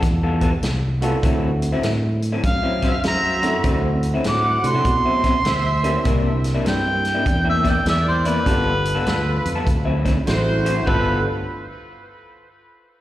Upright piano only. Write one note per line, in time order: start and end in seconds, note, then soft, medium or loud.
1.01 1.79 A3 medium
1.01 1.79 C4 medium
1.01 1.79 D4 medium
1.01 1.79 E4 medium
1.01 1.79 F#4 medium
3.41 4.20 A3 medium
3.41 4.20 C4 medium
3.41 4.20 D4 medium
3.41 4.20 E4 medium
3.41 4.20 F#4 medium
4.63 4.83 A3 medium
4.63 4.83 C4 medium
4.63 4.83 D4 medium
4.63 4.83 E4 medium
4.63 4.83 F#4 medium
5.83 6.61 A#3 medium
5.83 6.61 C4 medium
5.83 6.62 D4 medium
5.83 6.62 E4 medium
5.83 6.62 G4 medium
6.65 7.00 A#3 medium
6.65 7.00 C4 medium
6.65 7.01 D4 medium
6.65 7.01 E4 medium
6.65 7.01 G4 medium
8.45 8.81 A3 medium
8.45 8.81 B3 medium
8.45 8.81 D4 medium
8.45 8.81 F4 medium
8.45 8.82 G4 medium
10.25 10.61 A3 medium
10.25 10.61 C4 medium
10.25 10.61 D4 medium
10.25 10.62 E4 soft
10.25 10.62 F#4 medium
10.88 11.22 A3 medium
10.88 11.22 B3 medium
10.88 11.22 D4 medium
10.88 11.23 F4 medium
10.88 11.23 G4 medium